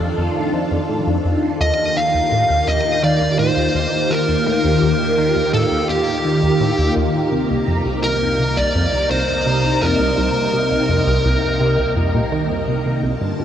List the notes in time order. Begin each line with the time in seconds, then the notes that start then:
Already playing: F2 D#3 D4 F4 A4
0.00 F2
0.18 F2
0.53 F3
0.71 F2
0.89 A2
1.07 F2
1.25 F2
1.60 D#2 D#3 A#3 F4 G4 D#5
1.96 D#3 F5
2.14 D#2
2.32 A2
2.50 D#2
2.68 D#2 D#5
3.03 D#3 D5
3.21 D#2
3.39 A2 C5
3.57 D#2
3.75 D#2
4.10 D#3 A#4
4.29 D#2
4.46 A2
4.64 D#2
4.82 D#2
5.18 D#3
5.36 D#2
5.53 A2 A4
5.71 D#2
5.89 D#2 G4
6.25 D#3
6.43 D#2
6.61 A2
6.78 D#2
6.96 D#2
7.32 C2 C3 D#4 A#4
7.50 C2
7.68 F2
7.86 C2
8.03 C2 A#4
8.39 C3
8.57 C2 D5
8.75 F2
8.93 C2
9.11 C2 C5
9.46 C3
9.64 C2
9.82 F2 A#4
10.00 C2
10.18 C2
10.54 C3
10.71 C2
10.89 F2
11.07 C2
11.25 C2
11.60 C3
11.78 C2
11.96 F2
12.14 A#2
12.32 D#3
12.68 C3
12.86 C2
13.03 C2 G2 D3 A#3 F4 A5
13.21 G2
13.39 G2